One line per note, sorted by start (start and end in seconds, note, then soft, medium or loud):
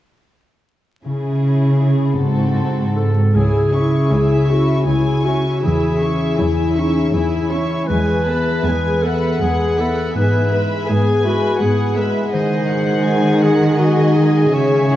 1.05 2.21 C#3 soft
1.05 2.15 C#3 soft
1.05 2.14 C#4 soft
1.05 2.15 E4 soft
1.05 2.15 G#4 soft
1.43 2.21 C#4 soft
1.81 2.21 E4 soft
1.81 4.11 G#4 soft
2.18 3.38 G#2 soft
2.18 3.13 G#2 soft
2.18 3.15 C4 soft
2.18 3.15 F#4 soft
2.18 3.16 A4 soft
2.56 3.38 C4 soft
2.94 3.39 F#4 soft
2.94 3.37 A4 soft
2.94 3.39 A4 soft
3.34 4.01 C#2 soft
3.34 5.66 C#3 soft
3.34 3.71 E4 soft
3.34 3.71 G#4 soft
3.34 4.52 G#4 soft
3.34 3.71 C#5 soft
3.34 3.71 G#5 soft
3.72 4.12 C#4 soft
3.72 4.48 E4 soft
3.72 4.10 E4 soft
3.72 4.11 E5 soft
3.72 4.12 C#6 soft
4.10 4.77 C#2 soft
4.10 4.48 E4 soft
4.10 4.49 G#4 soft
4.10 5.99 G#4 soft
4.10 4.50 C#5 soft
4.10 4.84 E5 soft
4.10 4.50 G#5 soft
4.48 4.87 C#4 soft
4.48 4.86 E4 soft
4.48 7.49 E4 soft
4.48 4.90 F#4 soft
4.48 4.87 E5 soft
4.48 4.87 C#6 soft
4.85 5.52 C#2 soft
4.85 8.77 G#3 soft
4.85 5.23 E4 soft
4.85 5.27 E4 soft
4.85 5.23 G#4 soft
4.85 5.22 C#5 soft
4.85 5.22 G#5 soft
4.85 5.64 G#5 soft
5.23 7.12 C#4 soft
5.23 5.63 C#4 soft
5.23 5.62 E4 soft
5.23 5.66 F#4 soft
5.23 5.63 E5 soft
5.23 5.62 C#6 soft
5.62 6.27 E2 soft
5.62 7.87 E3 soft
5.62 5.98 E4 soft
5.62 5.99 G#4 soft
5.62 6.37 G#4 soft
5.62 5.98 C#5 soft
5.62 7.85 E5 soft
5.62 5.98 G#5 soft
6.00 6.39 C#4 soft
6.00 6.38 E4 soft
6.00 6.74 G#4 soft
6.00 6.38 E5 soft
6.00 6.39 C#6 soft
6.38 7.03 E2 soft
6.38 6.79 E4 soft
6.38 6.76 E4 soft
6.38 6.77 G#4 soft
6.38 6.76 C#5 soft
6.38 7.91 C#5 soft
6.38 6.76 G#5 soft
6.75 7.14 C#4 soft
6.75 7.13 D#4 soft
6.75 7.12 E4 soft
6.75 8.25 G#4 soft
6.75 7.13 E5 soft
6.75 7.13 C#6 soft
7.13 7.78 E2 soft
7.13 7.92 C#4 soft
7.13 7.52 E4 soft
7.13 7.48 E4 soft
7.13 7.49 G#4 soft
7.13 7.49 C#5 soft
7.13 7.49 G#5 soft
7.51 7.89 C#4 soft
7.51 9.76 E4 soft
7.51 7.89 E4 soft
7.51 7.89 C#5 soft
7.51 7.89 E5 soft
7.51 7.89 C#6 soft
7.87 8.54 E2 soft
7.87 10.17 E3 soft
7.87 8.24 G#3 soft
7.87 8.25 G#4 soft
7.87 9.04 B4 soft
7.87 8.24 B4 soft
7.87 8.24 G#5 soft
7.87 8.27 G#5 soft
8.26 8.65 B3 soft
8.26 9.01 G#4 soft
8.26 8.65 B4 soft
8.26 8.65 E5 soft
8.26 8.64 A5 soft
8.26 8.65 B5 soft
8.65 9.30 E2 soft
8.65 9.03 G#3 soft
8.65 9.04 G#4 soft
8.65 12.35 B4 soft
8.65 9.04 B4 soft
8.65 9.03 G#5 soft
8.65 9.04 G#5 soft
9.02 9.41 B3 soft
9.02 10.87 G#4 soft
9.02 9.43 A4 soft
9.02 9.41 B4 soft
9.02 9.42 E5 soft
9.02 10.15 F#5 soft
9.02 9.42 B5 soft
9.40 10.04 E2 soft
9.40 9.76 G#3 soft
9.40 11.95 B3 soft
9.40 9.81 G#4 soft
9.40 9.76 G#4 soft
9.40 9.76 B4 soft
9.40 9.76 G#5 soft
9.77 10.14 B3 soft
9.77 10.50 E4 soft
9.77 10.15 A4 soft
9.77 10.15 B4 soft
9.77 10.16 E5 soft
9.77 10.15 B5 soft
10.14 12.35 G#2 soft
10.14 10.77 G#2 soft
10.14 10.49 B3 soft
10.14 10.49 G#4 soft
10.14 10.49 B4 soft
10.14 10.62 B4 soft
10.14 10.87 E5 soft
10.14 10.50 G#5 soft
10.51 10.89 G#3 soft
10.51 11.23 E4 soft
10.51 10.88 B4 soft
10.51 10.89 E5 soft
10.51 10.89 B5 soft
10.88 11.49 G#2 soft
10.88 11.24 B3 soft
10.88 11.24 G#4 soft
10.88 13.05 G#4 soft
10.88 11.27 G#4 soft
10.88 11.25 B4 soft
10.88 11.60 G#5 soft
10.88 11.25 G#5 soft
11.24 11.60 G#3 soft
11.24 12.35 E4 soft
11.24 11.63 F#4 soft
11.24 11.60 B4 soft
11.24 11.60 E5 soft
11.24 11.60 B5 soft
11.59 12.22 G#2 soft
11.59 14.15 G#3 soft
11.59 11.95 B3 soft
11.59 11.94 G#4 soft
11.59 11.97 G#4 soft
11.59 11.93 B4 soft
11.59 11.96 F#5 soft
11.59 11.93 G#5 soft
11.96 12.32 G#3 soft
11.96 12.36 B3 soft
11.96 12.33 B4 soft
11.96 12.32 E5 soft
11.96 12.33 E5 soft
11.96 12.32 B5 soft
12.32 14.57 D#3 soft
12.32 14.50 D#3 soft
12.32 14.50 G#3 soft
12.32 14.96 G#4 soft
12.32 13.44 C5 medium
12.32 12.68 D#5 soft
12.32 14.49 F#5 soft
12.32 14.96 G#5 soft
12.70 13.41 F#4 soft
12.70 13.06 F#5 soft
13.06 14.96 G#4 soft
13.06 13.42 G#5 soft
13.42 14.56 F#4 soft
13.42 13.81 G#4 soft
13.42 13.77 F#5 soft
13.78 14.57 D#4 soft
13.78 14.15 F#4 medium
13.78 14.53 D#5 soft
14.15 14.96 G#3 soft
14.15 14.55 G#4 medium
14.53 14.96 C#3 soft
14.53 14.96 C#4 soft
14.53 14.96 C#5 medium
14.53 14.96 E5 soft
14.53 14.91 E5 soft
14.90 14.96 E4 soft
14.90 14.96 F#5 soft